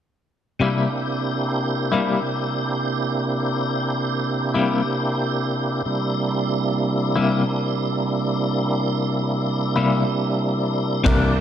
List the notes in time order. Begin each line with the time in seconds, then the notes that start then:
0.60 C3 G3 A#3 E4 G4
0.64 A#3 D4 E4
1.92 C3 G3 A#3 E4
4.54 C3 G3 A#3 E4
5.85 C3 G3 A#3 D4 E4
7.16 C3 G3 A#3 E4
9.76 C3 G3 A#3 E4
11.04 C2 C3 E3 A#3 D4 G4 D5, kick, ride